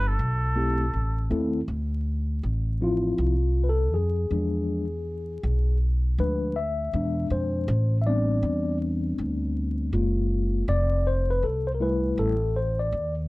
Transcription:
Already playing: upright bass G1
0.08 muted trumpet A4
0.19 upright bass B1
0.56 tine electric piano A3 C4 E4 G4
0.94 upright bass A1
1.30 upright bass D#2, tine electric piano A3 C4 E4 A4
1.68 upright bass D2
2.43 upright bass A1
2.81 tine electric piano F3 C4 E4 F4
3.18 upright bass C2
3.64 tine electric piano B4
3.69 tine electric piano A4
3.93 upright bass F2, tine electric piano G#4
4.31 upright bass E2, tine electric piano F3 G#3 D4
5.43 upright bass B1
6.18 upright bass D2, tine electric piano F3 G#3 D4 B4
6.56 tine electric piano E5
6.93 upright bass E2, tine electric piano B2 G#3 D4
7.30 upright bass F2, tine electric piano C5
7.68 upright bass A1
8.02 tine electric piano E5
8.06 tine electric piano G3 B3 C4 D4 D5
8.43 upright bass E2
9.18 upright bass D2
9.93 upright bass F#1, tine electric piano G#3 A#3 F4
10.68 upright bass F1, tine electric piano D5
11.07 tine electric piano C5
11.30 tine electric piano B4
11.43 upright bass C2, tine electric piano A4
11.67 tine electric piano C5
11.75 tine electric piano A#4
11.80 tine electric piano G3 A3 E4 B4
12.18 upright bass A1, tine electric piano A4
12.56 tine electric piano C5
12.79 tine electric piano D5
12.92 upright bass D#2

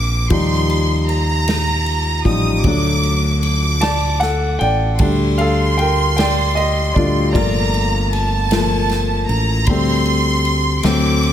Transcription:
Already playing: fingered electric bass A#1, violin section D6
0.30 fingered electric bass D#2, grand piano F3 G3 D#4, violin section C6, kick, ride
0.70 ride
1.08 violin section A#5, ride
1.48 snare, ride
1.86 ride
2.25 fingered electric bass A1, grand piano F3 G3 D#4, violin section D#6, kick, ride
2.63 fingered electric bass D2, grand piano F#3 A3 D4, violin section D6, kick, ride
3.03 ride
3.41 violin section D6, ride
3.81 grand piano D5 A5, snare, ride
4.20 grand piano A4 F#5, snare, ride
4.59 fingered electric bass A1, grand piano D5 G5, ride
4.98 fingered electric bass D2, grand piano G3 A3 D4, violin section C6, kick, ride
5.38 grand piano A4 F5, ride
5.77 grand piano A#4 G5, ride
6.16 grand piano D5 G5, snare, ride
6.55 grand piano G4 D#5, ride
6.94 fingered electric bass D2, grand piano G3 A3 D4 F4 D5, kick, ride
7.33 fingered electric bass G1, grand piano F3 A3 A#3 F4 D5, violin section A#5, kick, ride
7.74 ride
8.13 violin section A5, ride
8.51 grand piano F3 A3 A#3, snare, ride
8.89 snare, ride
9.29 fingered electric bass A1, violin section A#5, ride
9.67 fingered electric bass D2, grand piano G3 A3 C4, violin section C6, kick, ride
10.05 ride
10.45 ride
10.83 fingered electric bass D2, grand piano F#3 A3 C4, violin section D6, snare, ride
11.23 ride

